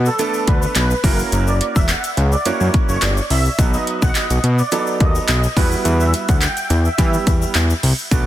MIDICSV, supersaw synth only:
0, 0, Header, 1, 2, 480
1, 0, Start_track
1, 0, Key_signature, 1, "minor"
1, 0, Tempo, 566038
1, 1121, Time_signature, 4, 2, 24, 8
1, 7008, End_track
2, 0, Start_track
2, 0, Title_t, "Supersaw synth"
2, 0, Program_c, 0, 81
2, 48, Note_on_c, 0, 69, 85
2, 254, Note_off_c, 0, 69, 0
2, 402, Note_on_c, 0, 71, 94
2, 511, Note_off_c, 0, 71, 0
2, 642, Note_on_c, 0, 71, 88
2, 751, Note_off_c, 0, 71, 0
2, 881, Note_on_c, 0, 70, 82
2, 990, Note_off_c, 0, 70, 0
2, 1248, Note_on_c, 0, 74, 79
2, 1345, Note_off_c, 0, 74, 0
2, 1487, Note_on_c, 0, 76, 74
2, 1585, Note_off_c, 0, 76, 0
2, 1601, Note_on_c, 0, 78, 76
2, 1710, Note_off_c, 0, 78, 0
2, 1968, Note_on_c, 0, 74, 82
2, 2065, Note_off_c, 0, 74, 0
2, 2081, Note_on_c, 0, 73, 93
2, 2190, Note_off_c, 0, 73, 0
2, 2448, Note_on_c, 0, 73, 87
2, 2545, Note_off_c, 0, 73, 0
2, 2560, Note_on_c, 0, 74, 84
2, 2670, Note_off_c, 0, 74, 0
2, 2800, Note_on_c, 0, 76, 81
2, 2910, Note_off_c, 0, 76, 0
2, 3168, Note_on_c, 0, 75, 85
2, 3265, Note_off_c, 0, 75, 0
2, 3408, Note_on_c, 0, 78, 76
2, 3505, Note_off_c, 0, 78, 0
2, 3523, Note_on_c, 0, 75, 87
2, 3631, Note_off_c, 0, 75, 0
2, 3889, Note_on_c, 0, 74, 79
2, 4095, Note_off_c, 0, 74, 0
2, 4242, Note_on_c, 0, 75, 89
2, 4351, Note_off_c, 0, 75, 0
2, 4480, Note_on_c, 0, 75, 83
2, 4590, Note_off_c, 0, 75, 0
2, 4721, Note_on_c, 0, 71, 86
2, 4830, Note_off_c, 0, 71, 0
2, 5089, Note_on_c, 0, 76, 89
2, 5186, Note_off_c, 0, 76, 0
2, 5330, Note_on_c, 0, 78, 69
2, 5426, Note_off_c, 0, 78, 0
2, 5443, Note_on_c, 0, 79, 78
2, 5552, Note_off_c, 0, 79, 0
2, 5810, Note_on_c, 0, 76, 79
2, 6141, Note_off_c, 0, 76, 0
2, 7008, End_track
0, 0, End_of_file